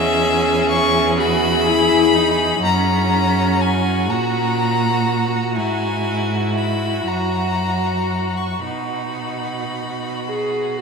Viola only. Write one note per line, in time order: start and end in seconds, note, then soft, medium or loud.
0.00 1.20 C#4 medium
1.18 1.69 F#4 medium
1.67 2.16 E4 medium
2.14 2.66 D#4 medium
2.64 4.10 C#4 medium
4.10 8.61 F#4 medium
8.66 10.11 D#4 soft
10.25 10.79 G#4 soft
10.78 10.81 F#4 soft